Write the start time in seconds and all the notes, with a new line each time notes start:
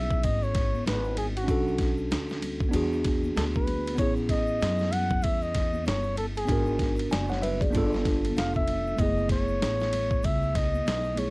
Already playing: B1 B3 C#4 E4 G#4 E5
0.11 kick, shaker
0.23 G#1 D#5, kick, ride, low conga, shaker
0.43 C#5, shaker
0.55 kick, snare, ride, shaker
0.74 high conga, shaker
0.86 G#1 B4, snare, hi-hat pedal, ride, shaker
1.04 shaker
1.17 G#4, ride, high conga, low conga, shaker
1.36 F#4, ride, shaker
1.44 C#4 D4
1.48 B1 F#4 A4, kick, ride, shaker
1.68 shaker
1.78 kick, snare, ride, shaker
1.97 shaker
2.11 D2, snare, hi-hat pedal, ride, shaker
2.29 snare, shaker
2.42 ride, high conga, low conga, shaker
2.60 kick, shaker
2.69 B3 D4, low conga, shaker
2.73 E2 F#4 G#4, ride
2.93 shaker
3.04 kick, snare, ride, shaker
3.24 high conga, shaker
3.36 D2 A4, snare, hi-hat pedal, ride, shaker
3.54 B4, kick, shaker
3.66 ride, high conga, low conga, shaker
3.86 ride, shaker
3.95 A1 B3 C#4 C#5, kick, ride, shaker
3.99 E4 G#4
4.16 shaker
4.29 D#5, kick, snare, ride, shaker
4.47 shaker
4.61 F#2, snare, hi-hat pedal, ride, shaker
4.79 snare, shaker
4.92 F#5, ride, high conga, low conga, shaker
5.09 kick, shaker
5.22 E2 E5, kick, ride, low conga, shaker
5.42 D#5, shaker
5.54 kick, snare, ride, shaker
5.74 high conga, shaker
5.85 G1 C#5, snare, hi-hat pedal, ride, shaker
6.03 shaker
6.16 A4, ride, high conga, low conga, shaker
6.35 G#4, ride, shaker
6.45 G#1 B3 D4, kick, ride, shaker
6.50 F#4 A#4
6.66 shaker
6.79 kick, snare, ride, shaker
6.96 ride, shaker
7.10 F#1 D5 G#5, snare, hi-hat pedal, ride, shaker
7.28 C#5 F#5, snare, shaker
7.42 B4 E5, ride, high conga, low conga, shaker
7.61 G#4 D5, kick, ride, shaker
7.70 A#3 D4, low conga, shaker
7.75 G1 B3 F4 A4, kick, ride
7.92 snare, high conga, shaker
8.05 kick, snare, ride, shaker
8.24 ride, high conga, shaker
8.36 F1 F5, snare, hi-hat pedal, ride, shaker
8.54 E5, kick, high conga, shaker
8.67 ride, low conga, shaker
8.87 shaker
8.96 F#1 G#3 B3, kick, ride, shaker
9.00 A3 E4 G#4 D#5
9.17 shaker
9.29 C#5, kick, snare, ride, shaker
9.48 shaker
9.62 A1, snare, hi-hat pedal, ride, shaker
9.80 snare, shaker
9.93 ride, high conga, low conga, shaker
10.11 kick, shaker
10.23 C#2 E5, kick, ride, low conga, shaker
10.42 shaker
10.55 D#5, kick, snare, ride, shaker
10.74 high conga, shaker
10.86 B1, snare, hi-hat pedal, ride, shaker
11.04 shaker
11.15 A3 B3 E4 G#4 C#5, ride, high conga, low conga, shaker